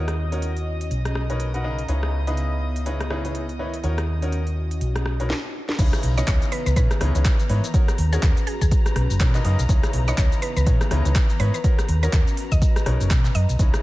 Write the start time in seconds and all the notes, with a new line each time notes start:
Already playing: D#2 C#4 D#5 D#6
0.08 F#4, cross-stick, closed hi-hat
0.32 D#3 D#4 F#4 A#4 C#5, closed hi-hat
0.42 closed hi-hat
0.57 closed hi-hat
0.81 closed hi-hat
0.91 B1, closed hi-hat
1.05 cross-stick, closed hi-hat
1.15 cross-stick
1.30 B2 D#4 A#4 B4 C#5, closed hi-hat
1.36 A#5, closed hi-hat
1.54 B2 D#4 A#4 B4 F#5, closed hi-hat
1.64 C#3 D#4 A#4 B4 D#5
1.79 closed hi-hat
1.88 C#2 C#3 B3 D#4 E4 B4 C#5, closed hi-hat
2.03 cross-stick
2.27 C#3 D#4 E4 B4 D#5, closed hi-hat
2.37 closed hi-hat
2.76 E4, closed hi-hat
2.86 C#3 D#4 E4 B4 C#5, closed hi-hat
3.00 cross-stick, closed hi-hat
3.10 C#3 D#4 E4 B4 C#5, cross-stick
3.25 C#3 D#4 E4 B4 C#5, closed hi-hat
3.35 closed hi-hat
3.49 closed hi-hat
3.59 D#3 D#4 E4 B4 C#5
3.74 closed hi-hat
3.84 D#2 D#3 C#4 D#4 F#4 A#4 C#5, closed hi-hat
3.98 cross-stick, closed hi-hat
4.22 D#3 D#4 F#4 A#4 C#5, closed hi-hat
4.28 F#4
4.32 closed hi-hat
4.47 closed hi-hat
4.71 closed hi-hat
4.81 B1, closed hi-hat
4.96 cross-stick, closed hi-hat
5.06 cross-stick
5.20 B2 D#4 A#4 B4 C#5, closed hi-hat
5.30 snare
5.69 snare
5.79 C#2 C#3 B3 D#4 E4 B4 C#5 A#5, kick, closed hi-hat, crash, shaker
5.93 cross-stick, closed hi-hat, shaker
6.03 B1, open hi-hat
6.17 C#3 E3 D#4 E4 B4 C#5 D#5, closed hi-hat, shaker
6.28 C#2 C#5, kick, clap, closed hi-hat, shaker
6.42 closed hi-hat, shaker
6.52 B4, open hi-hat
6.66 C#2 B4, closed hi-hat, shaker
6.76 A#2 C#3 D#4 E4 B4 C#5, kick, closed hi-hat, shaker
6.91 cross-stick, closed hi-hat, shaker
7.01 C#2 C#3 D#4 E4 B4 C#5, cross-stick, open hi-hat
7.15 C#2 C#3 D#4 E4 B4 C#5, closed hi-hat, shaker
7.25 kick, clap, closed hi-hat, shaker
7.39 closed hi-hat, shaker
7.49 G#2 D#3 D#4 E4 B4 C#5, open hi-hat
7.64 closed hi-hat, shaker
7.74 D#3 C#4 D#4 F#4 A#4 C#5, kick, closed hi-hat, shaker
7.88 cross-stick, closed hi-hat, shaker
7.98 D#2, open hi-hat
8.13 D#3 D#4 F#4 G#4 A#4 C#5, closed hi-hat, shaker
8.19 F#4
8.23 D#2, kick, clap, closed hi-hat, shaker
8.37 closed hi-hat, shaker
8.47 G#4, open hi-hat
8.61 D#2 G#4, kick, closed hi-hat, shaker
8.71 kick, closed hi-hat, shaker
8.86 cross-stick, closed hi-hat, shaker
8.96 B1, cross-stick, open hi-hat
9.10 F#1, open hi-hat, shaker
9.16 A#5
9.20 B2 D#4 A#4 B4 C#5, kick, clap, closed hi-hat, shaker
9.35 B2 D#4 A#4 B4 D#5, clap, closed hi-hat, shaker
9.45 F#2 C#3 D#4 A#4 B4 D#5, open hi-hat
9.59 B1, closed hi-hat, shaker
9.69 C#2 C#3 B3 D#4 E4 B4 C#5, kick, closed hi-hat, shaker
9.83 cross-stick, closed hi-hat, shaker
9.93 B1 E3, open hi-hat
10.08 C#3 D#4 E4 B4 C#5 D#5, closed hi-hat, shaker
10.18 C#2 C#5, kick, clap, closed hi-hat, shaker
10.32 closed hi-hat, shaker
10.42 B4, open hi-hat
10.56 C#2 B4, closed hi-hat, shaker
10.66 A#2 C#3 D#4 E4 B4 C#5, kick, closed hi-hat, shaker
10.81 cross-stick, closed hi-hat, shaker
10.91 C#2 C#3 D#4 E4 B4 C#5, cross-stick, open hi-hat
11.05 C#2 C#3 D#4 E4 B4 C#5, closed hi-hat, shaker
11.15 kick, clap, closed hi-hat, shaker
11.30 closed hi-hat, shaker
11.40 G#2 D#3 D#4 E4 B4 C#5, open hi-hat
11.54 B4, closed hi-hat, shaker
11.64 D#3 C#4 D#4 F#4 A#4 C#5, kick, closed hi-hat, shaker
11.79 cross-stick, closed hi-hat, shaker
11.88 D#2, open hi-hat
12.03 D#3 D#4 F#4 A#4 C#5, closed hi-hat, shaker
12.09 D#2 F#4
12.13 kick, clap, closed hi-hat, shaker
12.27 closed hi-hat, shaker
12.37 open hi-hat
12.52 D#2 D#5, kick, closed hi-hat, shaker
12.62 kick, closed hi-hat, shaker
12.76 cross-stick, closed hi-hat, shaker
12.86 B1 B2 D#4 A#4 B4 C#5, cross-stick, open hi-hat
13.00 F#1, open hi-hat, shaker
13.06 A#5
13.10 B2, kick, clap, closed hi-hat, shaker
13.25 clap, closed hi-hat, shaker
13.35 F#2 D#5, open hi-hat
13.49 B1, closed hi-hat, shaker
13.59 C#2 C#3 B3 D#4 E4 B4 C#5 A#5, kick, closed hi-hat, shaker
13.70 E3
13.74 cross-stick, closed hi-hat, shaker